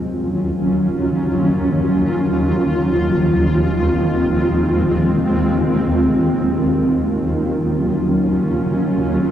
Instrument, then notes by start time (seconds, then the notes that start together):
ambient pad
Already playing: D#2 D#3 F#3 C#4 F4
2.87 G#3 C4
6.75 F#3 C#4 F4